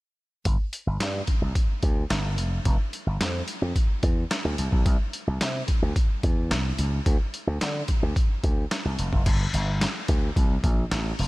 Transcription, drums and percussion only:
0.45 kick, closed hi-hat
0.73 closed hi-hat
1.00 snare, clap, closed hi-hat
1.27 kick, closed hi-hat
1.55 kick, closed hi-hat
1.83 kick, closed hi-hat
2.10 snare, clap, closed hi-hat
2.38 closed hi-hat
2.65 kick, closed hi-hat
2.93 closed hi-hat
3.21 snare, clap, closed hi-hat
3.48 closed hi-hat
3.76 kick, closed hi-hat
4.03 kick, closed hi-hat
4.31 snare, clap, closed hi-hat
4.58 closed hi-hat
4.72 kick
4.86 kick, closed hi-hat
5.13 closed hi-hat
5.41 snare, clap, closed hi-hat
5.68 kick, closed hi-hat
5.96 kick, closed hi-hat
6.23 kick, closed hi-hat
6.51 snare, clap, closed hi-hat
6.78 closed hi-hat
7.06 kick, closed hi-hat
7.34 closed hi-hat
7.61 snare, clap, closed hi-hat
7.88 kick, closed hi-hat
8.16 kick, closed hi-hat
8.44 kick, closed hi-hat
8.71 snare, clap, closed hi-hat
8.99 closed hi-hat
9.13 kick
9.26 kick, closed hi-hat, crash
9.54 closed hi-hat
9.81 snare, clap, closed hi-hat
10.08 kick, closed hi-hat
10.36 kick, closed hi-hat
10.64 kick, closed hi-hat
10.92 snare, clap, closed hi-hat
11.19 open hi-hat

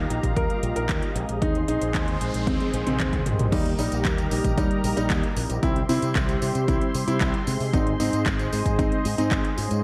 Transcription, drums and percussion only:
0.10 closed hi-hat
0.23 kick, closed hi-hat
0.37 kick, closed hi-hat
0.50 closed hi-hat
0.63 closed hi-hat
0.76 closed hi-hat
0.89 kick, clap, closed hi-hat
1.02 closed hi-hat
1.16 closed hi-hat
1.29 closed hi-hat
1.42 kick, closed hi-hat
1.55 closed hi-hat
1.68 closed hi-hat
1.82 closed hi-hat
1.94 kick, clap, closed hi-hat
2.08 closed hi-hat
2.21 closed hi-hat
2.34 closed hi-hat
2.47 kick, closed hi-hat, high tom
2.60 closed hi-hat, high tom
2.74 closed hi-hat
2.87 closed hi-hat, mid tom
3.00 kick, clap, closed hi-hat, mid tom
3.13 kick, closed hi-hat, mid tom
3.26 closed hi-hat, mid tom
3.39 closed hi-hat, mid tom
3.52 kick, closed hi-hat, crash, tambourine
3.66 closed hi-hat
3.79 open hi-hat, tambourine
3.92 closed hi-hat, tambourine
4.05 kick, clap, closed hi-hat, tambourine
4.18 closed hi-hat, tambourine
4.31 open hi-hat, tambourine
4.44 kick, closed hi-hat, tambourine
4.58 kick, closed hi-hat, tambourine
4.71 closed hi-hat
4.84 open hi-hat, tambourine
4.97 closed hi-hat, tambourine
5.10 kick, clap, closed hi-hat, tambourine
5.23 closed hi-hat
5.37 open hi-hat, tambourine
5.50 closed hi-hat, tambourine
5.63 kick, closed hi-hat, tambourine
5.76 closed hi-hat
5.89 open hi-hat, tambourine
6.02 closed hi-hat, tambourine
6.15 kick, clap, closed hi-hat, tambourine
6.29 closed hi-hat, tambourine
6.42 open hi-hat, tambourine
6.55 closed hi-hat, tambourine
6.68 kick, closed hi-hat, tambourine
6.81 closed hi-hat
6.95 open hi-hat, tambourine
7.08 closed hi-hat, tambourine
7.21 kick, clap, closed hi-hat, tambourine
7.34 closed hi-hat
7.47 open hi-hat, tambourine
7.60 open hi-hat, tambourine
7.73 kick, closed hi-hat, tambourine
7.87 closed hi-hat
8.00 open hi-hat, tambourine
8.13 closed hi-hat, tambourine
8.26 kick, clap, closed hi-hat, tambourine
8.39 closed hi-hat, tambourine
8.53 open hi-hat, tambourine
8.66 kick, closed hi-hat, tambourine
8.79 kick, closed hi-hat, tambourine
8.92 closed hi-hat
9.05 open hi-hat, tambourine
9.18 closed hi-hat, tambourine
9.31 kick, clap, closed hi-hat, tambourine
9.45 closed hi-hat
9.58 open hi-hat, tambourine
9.71 closed hi-hat, tambourine

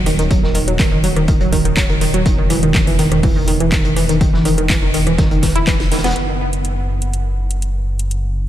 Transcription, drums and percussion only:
0.06 cross-stick, closed hi-hat, open hi-hat
0.19 closed hi-hat
0.31 kick, closed hi-hat
0.43 snare
0.54 closed hi-hat, open hi-hat
0.68 closed hi-hat
0.79 kick, snare, clap, closed hi-hat, open hi-hat
1.04 closed hi-hat, open hi-hat
1.16 cross-stick, closed hi-hat
1.28 kick, closed hi-hat
1.41 closed hi-hat
1.53 kick, closed hi-hat, open hi-hat
1.65 closed hi-hat
1.76 kick, snare, clap, closed hi-hat
1.90 closed hi-hat
2.01 closed hi-hat, open hi-hat
2.14 closed hi-hat
2.26 kick, closed hi-hat
2.50 cross-stick, closed hi-hat, open hi-hat
2.63 closed hi-hat
2.74 kick, snare, clap, closed hi-hat
2.87 open hi-hat
2.99 snare, closed hi-hat, open hi-hat
3.12 cross-stick, closed hi-hat
3.23 kick, closed hi-hat, open hi-hat
3.48 closed hi-hat, open hi-hat
3.60 closed hi-hat
3.72 kick, snare, clap, closed hi-hat
3.85 closed hi-hat
3.96 cross-stick, closed hi-hat, open hi-hat
4.09 closed hi-hat
4.21 kick, closed hi-hat
4.34 snare
4.45 cross-stick, closed hi-hat, open hi-hat
4.58 closed hi-hat
4.70 kick, snare, clap, closed hi-hat, open hi-hat
4.94 closed hi-hat, open hi-hat
5.07 cross-stick, closed hi-hat
5.18 kick, snare, closed hi-hat
5.31 closed hi-hat
5.42 kick, snare, closed hi-hat, open hi-hat
5.56 closed hi-hat
5.67 kick, snare, clap, closed hi-hat
5.80 snare
5.92 snare, closed hi-hat, open hi-hat
5.97 snare, closed hi-hat
6.04 snare, closed hi-hat
6.10 snare, closed hi-hat
6.16 closed hi-hat
6.53 closed hi-hat
6.65 closed hi-hat
7.02 closed hi-hat
7.13 closed hi-hat
7.51 closed hi-hat
7.62 closed hi-hat
7.99 closed hi-hat
8.11 closed hi-hat

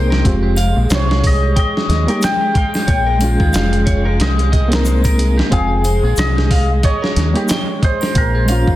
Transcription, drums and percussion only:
0.12 snare
0.25 kick, closed hi-hat
0.56 closed hi-hat, triangle
0.90 snare, closed hi-hat, shaker
1.11 snare
1.24 kick, open hi-hat
1.56 kick, closed hi-hat
1.77 snare
1.90 snare, closed hi-hat
2.08 closed hi-hat
2.22 snare, closed hi-hat, shaker
2.55 kick, closed hi-hat
2.74 snare, triangle
2.88 kick, closed hi-hat
3.20 closed hi-hat, triangle
3.40 kick
3.53 snare, closed hi-hat, shaker
3.73 closed hi-hat
3.87 kick, closed hi-hat
4.20 snare, closed hi-hat
4.39 closed hi-hat
4.53 kick, closed hi-hat
4.72 snare, closed hi-hat
4.85 closed hi-hat, shaker
5.04 kick, closed hi-hat, triangle
5.19 closed hi-hat
5.39 snare
5.52 kick, closed hi-hat
5.84 closed hi-hat, triangle
6.17 snare, closed hi-hat, shaker
6.38 snare
6.51 kick, open hi-hat
6.83 kick, closed hi-hat
7.04 snare
7.16 snare, closed hi-hat
7.36 closed hi-hat
7.49 snare, closed hi-hat, shaker
7.83 kick, closed hi-hat
8.01 snare, triangle
8.15 kick, closed hi-hat
8.48 closed hi-hat, triangle
8.67 kick

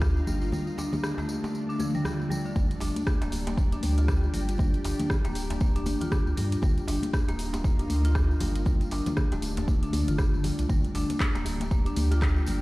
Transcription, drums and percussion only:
0.01 kick, cross-stick, tambourine, djembe tone
0.17 tambourine
0.27 tambourine, djembe tone, high conga, low conga
0.41 tambourine
0.52 mid tom, tambourine, djembe tone, high conga
0.67 tambourine
0.78 tambourine, djembe slap
0.92 mid tom, tambourine, high conga, djembe tone, low conga
1.04 cross-stick, tambourine
1.18 tambourine, djembe slap, djembe tone
1.29 tambourine
1.43 tambourine, djembe slap, djembe tone, high conga
1.55 tambourine
1.70 tambourine
1.79 tambourine, high conga, djembe tone
1.95 mid tom, tambourine
2.05 cross-stick, tambourine, djembe tone, low conga
2.20 tambourine, high conga
2.30 tambourine, djembe tone, low conga
2.46 tambourine
2.56 kick, mid tom, tambourine, high conga
2.71 closed hi-hat, tambourine
2.80 open hi-hat, tambourine, djembe slap, djembe tone
2.96 closed hi-hat, tambourine, high conga
3.07 kick, cross-stick, tambourine, djembe tone
3.21 closed hi-hat, tambourine, djembe slap
3.32 open hi-hat, tambourine, djembe tone
3.47 closed hi-hat, tambourine, djembe slap, high conga
3.57 kick, tambourine
3.72 closed hi-hat, tambourine, djembe tone
3.83 open hi-hat, tambourine, high conga
3.98 closed hi-hat, tambourine, djembe tone
4.08 kick, cross-stick, tambourine
4.24 tambourine, djembe tone
4.34 open hi-hat, tambourine, high conga, low conga
4.49 closed hi-hat, tambourine
4.58 kick, mid tom, tambourine, high conga, djembe tone
4.74 closed hi-hat, tambourine
4.84 open hi-hat, tambourine, djembe slap, djembe tone
4.99 closed hi-hat, mid tom, tambourine, high conga, low conga
5.10 kick, cross-stick, tambourine, djembe tone
5.25 closed hi-hat, tambourine, djembe slap
5.35 open hi-hat, tambourine
5.50 closed hi-hat, tambourine, djembe slap, djembe tone, high conga
5.60 kick, tambourine
5.75 closed hi-hat, tambourine, djembe tone
5.86 open hi-hat, tambourine, high conga
6.00 closed hi-hat, mid tom, tambourine, djembe tone
6.12 kick, cross-stick, tambourine, low conga
6.27 tambourine, high conga
6.37 open hi-hat, tambourine, djembe tone, low conga
6.52 closed hi-hat, tambourine
6.62 kick, mid tom, tambourine, high conga, djembe tone
6.78 closed hi-hat, tambourine
6.88 open hi-hat, tambourine, djembe slap, djembe tone
7.03 closed hi-hat, tambourine, high conga
7.13 kick, cross-stick, tambourine
7.28 closed hi-hat, tambourine, djembe slap, djembe tone
7.39 open hi-hat, tambourine
7.53 closed hi-hat, tambourine, djembe slap, high conga, djembe tone
7.64 kick, tambourine
7.79 closed hi-hat, tambourine, djembe tone
7.90 open hi-hat, tambourine, high conga
8.05 closed hi-hat, tambourine
8.15 kick, cross-stick, tambourine, djembe tone
8.31 tambourine
8.40 open hi-hat, tambourine, djembe tone, high conga, low conga
8.55 closed hi-hat, tambourine
8.65 kick, mid tom, tambourine, high conga, djembe tone
8.81 closed hi-hat, tambourine
8.91 open hi-hat, tambourine, djembe slap
9.06 closed hi-hat, mid tom, tambourine, djembe tone, high conga, low conga
9.17 kick, cross-stick, tambourine
9.32 closed hi-hat, tambourine, djembe slap, djembe tone
9.42 open hi-hat, tambourine
9.57 closed hi-hat, tambourine, djembe slap, djembe tone, high conga
9.68 kick, tambourine
9.83 closed hi-hat, tambourine
9.93 open hi-hat, tambourine, high conga, djembe tone
10.08 closed hi-hat, mid tom, tambourine
10.18 kick, cross-stick, tambourine, djembe tone, low conga
10.34 tambourine, high conga
10.44 open hi-hat, tambourine, djembe tone, low conga
10.59 closed hi-hat, tambourine
10.69 kick, mid tom, tambourine, high conga
10.85 closed hi-hat, tambourine
10.95 open hi-hat, tambourine, djembe slap, djembe tone
11.10 closed hi-hat, tambourine, high conga
11.20 kick, cross-stick, clap, tambourine, djembe tone
11.35 closed hi-hat, tambourine, djembe slap
11.45 open hi-hat, tambourine, djembe tone
11.60 closed hi-hat, tambourine, djembe slap, high conga
11.71 kick, tambourine
11.85 closed hi-hat, tambourine, djembe tone
11.96 open hi-hat, tambourine, high conga
12.11 closed hi-hat, tambourine, djembe tone
12.22 kick, cross-stick, clap, tambourine
12.36 tambourine, djembe tone
12.46 open hi-hat, tambourine, high conga, low conga

